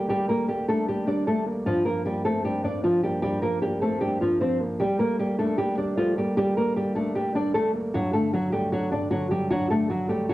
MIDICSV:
0, 0, Header, 1, 3, 480
1, 0, Start_track
1, 0, Key_signature, -2, "minor"
1, 0, Tempo, 392157
1, 114, Time_signature, 4, 2, 24, 8
1, 12655, End_track
2, 0, Start_track
2, 0, Title_t, "Nylon-string guitar"
2, 0, Program_c, 0, 24
2, 115, Note_on_c, 0, 67, 105
2, 124, Note_on_c, 0, 55, 90
2, 309, Note_off_c, 0, 67, 0
2, 315, Note_off_c, 0, 55, 0
2, 353, Note_on_c, 0, 70, 79
2, 363, Note_on_c, 0, 58, 66
2, 548, Note_off_c, 0, 70, 0
2, 554, Note_off_c, 0, 58, 0
2, 593, Note_on_c, 0, 67, 80
2, 602, Note_on_c, 0, 55, 61
2, 788, Note_off_c, 0, 67, 0
2, 793, Note_off_c, 0, 55, 0
2, 839, Note_on_c, 0, 69, 91
2, 849, Note_on_c, 0, 57, 68
2, 1031, Note_off_c, 0, 69, 0
2, 1037, Note_off_c, 0, 57, 0
2, 1083, Note_on_c, 0, 67, 94
2, 1093, Note_on_c, 0, 55, 72
2, 1274, Note_off_c, 0, 67, 0
2, 1279, Note_off_c, 0, 55, 0
2, 1310, Note_on_c, 0, 62, 84
2, 1319, Note_on_c, 0, 74, 66
2, 1506, Note_off_c, 0, 62, 0
2, 1512, Note_off_c, 0, 74, 0
2, 1556, Note_on_c, 0, 69, 84
2, 1566, Note_on_c, 0, 57, 70
2, 1750, Note_off_c, 0, 69, 0
2, 1755, Note_off_c, 0, 57, 0
2, 2034, Note_on_c, 0, 65, 114
2, 2043, Note_on_c, 0, 53, 85
2, 2228, Note_off_c, 0, 65, 0
2, 2234, Note_off_c, 0, 53, 0
2, 2265, Note_on_c, 0, 70, 83
2, 2275, Note_on_c, 0, 58, 64
2, 2463, Note_off_c, 0, 70, 0
2, 2469, Note_off_c, 0, 58, 0
2, 2517, Note_on_c, 0, 67, 81
2, 2525, Note_on_c, 0, 55, 61
2, 2710, Note_off_c, 0, 67, 0
2, 2715, Note_off_c, 0, 55, 0
2, 2753, Note_on_c, 0, 69, 85
2, 2763, Note_on_c, 0, 57, 65
2, 2948, Note_off_c, 0, 69, 0
2, 2954, Note_off_c, 0, 57, 0
2, 2995, Note_on_c, 0, 67, 93
2, 3005, Note_on_c, 0, 55, 73
2, 3189, Note_off_c, 0, 67, 0
2, 3195, Note_off_c, 0, 55, 0
2, 3230, Note_on_c, 0, 62, 77
2, 3240, Note_on_c, 0, 74, 62
2, 3426, Note_off_c, 0, 62, 0
2, 3432, Note_off_c, 0, 74, 0
2, 3473, Note_on_c, 0, 65, 87
2, 3483, Note_on_c, 0, 53, 71
2, 3668, Note_off_c, 0, 65, 0
2, 3674, Note_off_c, 0, 53, 0
2, 3713, Note_on_c, 0, 67, 80
2, 3723, Note_on_c, 0, 55, 59
2, 3908, Note_off_c, 0, 67, 0
2, 3914, Note_off_c, 0, 55, 0
2, 3944, Note_on_c, 0, 67, 110
2, 3955, Note_on_c, 0, 55, 85
2, 4143, Note_off_c, 0, 67, 0
2, 4149, Note_off_c, 0, 55, 0
2, 4187, Note_on_c, 0, 70, 84
2, 4197, Note_on_c, 0, 58, 62
2, 4384, Note_off_c, 0, 70, 0
2, 4390, Note_off_c, 0, 58, 0
2, 4431, Note_on_c, 0, 67, 87
2, 4439, Note_on_c, 0, 55, 61
2, 4627, Note_off_c, 0, 67, 0
2, 4632, Note_off_c, 0, 55, 0
2, 4672, Note_on_c, 0, 69, 86
2, 4682, Note_on_c, 0, 57, 69
2, 4868, Note_off_c, 0, 69, 0
2, 4873, Note_off_c, 0, 57, 0
2, 4905, Note_on_c, 0, 67, 89
2, 4915, Note_on_c, 0, 55, 68
2, 5103, Note_off_c, 0, 67, 0
2, 5109, Note_off_c, 0, 55, 0
2, 5153, Note_on_c, 0, 65, 80
2, 5164, Note_on_c, 0, 53, 61
2, 5348, Note_off_c, 0, 65, 0
2, 5354, Note_off_c, 0, 53, 0
2, 5397, Note_on_c, 0, 72, 92
2, 5406, Note_on_c, 0, 60, 65
2, 5590, Note_off_c, 0, 72, 0
2, 5596, Note_off_c, 0, 60, 0
2, 5870, Note_on_c, 0, 67, 106
2, 5879, Note_on_c, 0, 55, 90
2, 6066, Note_off_c, 0, 67, 0
2, 6072, Note_off_c, 0, 55, 0
2, 6107, Note_on_c, 0, 70, 81
2, 6117, Note_on_c, 0, 58, 64
2, 6304, Note_off_c, 0, 70, 0
2, 6310, Note_off_c, 0, 58, 0
2, 6355, Note_on_c, 0, 67, 81
2, 6365, Note_on_c, 0, 55, 67
2, 6549, Note_off_c, 0, 67, 0
2, 6555, Note_off_c, 0, 55, 0
2, 6595, Note_on_c, 0, 69, 86
2, 6605, Note_on_c, 0, 57, 67
2, 6789, Note_off_c, 0, 69, 0
2, 6795, Note_off_c, 0, 57, 0
2, 6828, Note_on_c, 0, 67, 90
2, 6838, Note_on_c, 0, 55, 74
2, 7025, Note_off_c, 0, 67, 0
2, 7031, Note_off_c, 0, 55, 0
2, 7069, Note_on_c, 0, 62, 75
2, 7078, Note_on_c, 0, 74, 57
2, 7265, Note_off_c, 0, 62, 0
2, 7271, Note_off_c, 0, 74, 0
2, 7312, Note_on_c, 0, 65, 99
2, 7322, Note_on_c, 0, 53, 77
2, 7507, Note_off_c, 0, 65, 0
2, 7513, Note_off_c, 0, 53, 0
2, 7562, Note_on_c, 0, 67, 80
2, 7572, Note_on_c, 0, 55, 62
2, 7753, Note_off_c, 0, 67, 0
2, 7759, Note_off_c, 0, 55, 0
2, 7795, Note_on_c, 0, 67, 114
2, 7804, Note_on_c, 0, 55, 92
2, 7989, Note_off_c, 0, 67, 0
2, 7994, Note_off_c, 0, 55, 0
2, 8040, Note_on_c, 0, 70, 88
2, 8050, Note_on_c, 0, 58, 64
2, 8232, Note_off_c, 0, 70, 0
2, 8238, Note_off_c, 0, 58, 0
2, 8277, Note_on_c, 0, 67, 78
2, 8287, Note_on_c, 0, 55, 64
2, 8470, Note_off_c, 0, 67, 0
2, 8476, Note_off_c, 0, 55, 0
2, 8510, Note_on_c, 0, 69, 88
2, 8521, Note_on_c, 0, 57, 72
2, 8706, Note_off_c, 0, 69, 0
2, 8712, Note_off_c, 0, 57, 0
2, 8756, Note_on_c, 0, 67, 88
2, 8765, Note_on_c, 0, 55, 64
2, 8950, Note_off_c, 0, 67, 0
2, 8955, Note_off_c, 0, 55, 0
2, 8999, Note_on_c, 0, 62, 78
2, 9009, Note_on_c, 0, 74, 65
2, 9192, Note_off_c, 0, 62, 0
2, 9197, Note_off_c, 0, 74, 0
2, 9233, Note_on_c, 0, 69, 94
2, 9242, Note_on_c, 0, 57, 70
2, 9427, Note_off_c, 0, 69, 0
2, 9433, Note_off_c, 0, 57, 0
2, 9722, Note_on_c, 0, 66, 109
2, 9731, Note_on_c, 0, 54, 85
2, 9913, Note_off_c, 0, 66, 0
2, 9918, Note_off_c, 0, 54, 0
2, 9955, Note_on_c, 0, 69, 93
2, 9965, Note_on_c, 0, 57, 65
2, 10149, Note_off_c, 0, 69, 0
2, 10155, Note_off_c, 0, 57, 0
2, 10202, Note_on_c, 0, 66, 87
2, 10211, Note_on_c, 0, 54, 68
2, 10393, Note_off_c, 0, 66, 0
2, 10399, Note_off_c, 0, 54, 0
2, 10433, Note_on_c, 0, 67, 87
2, 10443, Note_on_c, 0, 55, 68
2, 10628, Note_off_c, 0, 67, 0
2, 10634, Note_off_c, 0, 55, 0
2, 10677, Note_on_c, 0, 66, 101
2, 10687, Note_on_c, 0, 54, 79
2, 10870, Note_off_c, 0, 66, 0
2, 10876, Note_off_c, 0, 54, 0
2, 10914, Note_on_c, 0, 62, 77
2, 10922, Note_on_c, 0, 74, 64
2, 11108, Note_off_c, 0, 62, 0
2, 11113, Note_off_c, 0, 74, 0
2, 11146, Note_on_c, 0, 66, 91
2, 11156, Note_on_c, 0, 54, 65
2, 11344, Note_off_c, 0, 66, 0
2, 11350, Note_off_c, 0, 54, 0
2, 11394, Note_on_c, 0, 67, 80
2, 11404, Note_on_c, 0, 55, 61
2, 11588, Note_off_c, 0, 67, 0
2, 11594, Note_off_c, 0, 55, 0
2, 11634, Note_on_c, 0, 66, 104
2, 11645, Note_on_c, 0, 54, 88
2, 11829, Note_off_c, 0, 66, 0
2, 11835, Note_off_c, 0, 54, 0
2, 11877, Note_on_c, 0, 69, 90
2, 11887, Note_on_c, 0, 57, 68
2, 12070, Note_off_c, 0, 69, 0
2, 12076, Note_off_c, 0, 57, 0
2, 12114, Note_on_c, 0, 66, 77
2, 12124, Note_on_c, 0, 54, 66
2, 12308, Note_off_c, 0, 66, 0
2, 12315, Note_off_c, 0, 54, 0
2, 12352, Note_on_c, 0, 67, 84
2, 12362, Note_on_c, 0, 55, 63
2, 12547, Note_off_c, 0, 67, 0
2, 12553, Note_off_c, 0, 55, 0
2, 12599, Note_on_c, 0, 66, 95
2, 12609, Note_on_c, 0, 54, 70
2, 12655, Note_off_c, 0, 54, 0
2, 12655, Note_off_c, 0, 66, 0
2, 12655, End_track
3, 0, Start_track
3, 0, Title_t, "Grand piano"
3, 0, Program_c, 1, 0
3, 0, Control_c, 1, 64, 127
3, 0, Note_on_c, 1, 55, 75
3, 0, Note_on_c, 1, 57, 93
3, 0, Note_on_c, 1, 58, 76
3, 0, Note_on_c, 1, 62, 89
3, 0, Note_on_c, 1, 67, 81
3, 107, Note_off_c, 1, 55, 0
3, 107, Note_on_c, 1, 55, 88
3, 325, Note_off_c, 1, 57, 0
3, 344, Note_on_c, 1, 57, 77
3, 356, Note_off_c, 1, 67, 0
3, 570, Note_off_c, 1, 58, 0
3, 588, Note_on_c, 1, 58, 76
3, 837, Note_off_c, 1, 62, 0
3, 837, Note_on_c, 1, 62, 88
3, 1072, Note_on_c, 1, 67, 78
3, 1289, Note_off_c, 1, 55, 0
3, 1307, Note_on_c, 1, 55, 72
3, 1535, Note_off_c, 1, 57, 0
3, 1554, Note_on_c, 1, 57, 91
3, 1772, Note_off_c, 1, 58, 0
3, 1791, Note_on_c, 1, 58, 79
3, 2030, Note_off_c, 1, 55, 0
3, 2032, Note_off_c, 1, 58, 0
3, 2033, Note_off_c, 1, 67, 0
3, 2034, Note_off_c, 1, 57, 0
3, 2034, Note_on_c, 1, 43, 90
3, 2035, Note_off_c, 1, 62, 0
3, 2047, Control_c, 1, 64, 0
3, 2238, Control_c, 1, 64, 127
3, 2276, Note_on_c, 1, 53, 74
3, 2511, Note_on_c, 1, 58, 76
3, 2755, Note_on_c, 1, 60, 96
3, 2997, Note_on_c, 1, 62, 75
3, 3216, Note_off_c, 1, 43, 0
3, 3235, Note_on_c, 1, 43, 74
3, 3458, Note_off_c, 1, 53, 0
3, 3476, Note_on_c, 1, 53, 93
3, 3694, Note_off_c, 1, 58, 0
3, 3713, Note_on_c, 1, 58, 75
3, 3934, Note_off_c, 1, 43, 0
3, 3953, Note_on_c, 1, 43, 83
3, 3954, Note_off_c, 1, 60, 0
3, 4178, Note_off_c, 1, 53, 0
3, 4195, Note_off_c, 1, 62, 0
3, 4196, Note_on_c, 1, 53, 80
3, 4417, Note_off_c, 1, 58, 0
3, 4436, Note_on_c, 1, 58, 82
3, 4671, Note_on_c, 1, 60, 95
3, 4920, Note_on_c, 1, 62, 78
3, 5135, Note_off_c, 1, 43, 0
3, 5153, Note_on_c, 1, 43, 71
3, 5375, Note_off_c, 1, 53, 0
3, 5393, Note_on_c, 1, 53, 93
3, 5608, Note_off_c, 1, 58, 0
3, 5627, Note_on_c, 1, 58, 79
3, 5870, Note_off_c, 1, 58, 0
3, 5872, Note_off_c, 1, 60, 0
3, 5873, Note_off_c, 1, 43, 0
3, 5873, Note_off_c, 1, 53, 0
3, 5877, Note_off_c, 1, 62, 0
3, 5879, Note_on_c, 1, 55, 89
3, 5889, Control_c, 1, 64, 0
3, 6094, Control_c, 1, 64, 127
3, 6119, Note_on_c, 1, 57, 83
3, 6355, Note_on_c, 1, 58, 84
3, 6593, Note_on_c, 1, 62, 101
3, 6835, Note_on_c, 1, 67, 84
3, 7055, Note_off_c, 1, 55, 0
3, 7073, Note_on_c, 1, 55, 74
3, 7289, Note_off_c, 1, 57, 0
3, 7308, Note_on_c, 1, 57, 94
3, 7536, Note_off_c, 1, 58, 0
3, 7554, Note_on_c, 1, 58, 78
3, 7782, Note_off_c, 1, 55, 0
3, 7793, Note_off_c, 1, 62, 0
3, 7800, Note_on_c, 1, 55, 84
3, 8016, Note_off_c, 1, 57, 0
3, 8034, Note_off_c, 1, 67, 0
3, 8034, Note_on_c, 1, 57, 77
3, 8260, Note_off_c, 1, 58, 0
3, 8279, Note_on_c, 1, 58, 73
3, 8522, Note_on_c, 1, 62, 97
3, 8752, Note_on_c, 1, 67, 83
3, 8973, Note_off_c, 1, 55, 0
3, 8992, Note_on_c, 1, 55, 76
3, 9216, Note_off_c, 1, 57, 0
3, 9234, Note_on_c, 1, 57, 98
3, 9454, Note_off_c, 1, 58, 0
3, 9473, Note_on_c, 1, 58, 76
3, 9713, Note_off_c, 1, 55, 0
3, 9713, Note_off_c, 1, 58, 0
3, 9713, Note_off_c, 1, 67, 0
3, 9714, Note_off_c, 1, 57, 0
3, 9718, Note_off_c, 1, 62, 0
3, 9719, Note_on_c, 1, 43, 88
3, 9728, Control_c, 1, 64, 0
3, 9906, Control_c, 1, 64, 127
3, 9950, Note_on_c, 1, 50, 85
3, 10197, Note_on_c, 1, 54, 79
3, 10434, Note_on_c, 1, 57, 98
3, 10673, Note_on_c, 1, 62, 84
3, 10893, Note_off_c, 1, 43, 0
3, 10911, Note_on_c, 1, 43, 77
3, 11134, Note_off_c, 1, 50, 0
3, 11152, Note_on_c, 1, 50, 92
3, 11377, Note_off_c, 1, 54, 0
3, 11396, Note_on_c, 1, 54, 78
3, 11612, Note_off_c, 1, 43, 0
3, 11631, Note_on_c, 1, 43, 91
3, 11634, Note_off_c, 1, 57, 0
3, 11855, Note_off_c, 1, 50, 0
3, 11873, Note_off_c, 1, 62, 0
3, 11873, Note_on_c, 1, 50, 74
3, 12096, Note_off_c, 1, 54, 0
3, 12114, Note_on_c, 1, 54, 79
3, 12346, Note_on_c, 1, 57, 97
3, 12592, Note_on_c, 1, 62, 78
3, 12655, Note_off_c, 1, 43, 0
3, 12655, Note_off_c, 1, 50, 0
3, 12655, Note_off_c, 1, 54, 0
3, 12655, Note_off_c, 1, 57, 0
3, 12655, Note_off_c, 1, 62, 0
3, 12655, End_track
0, 0, End_of_file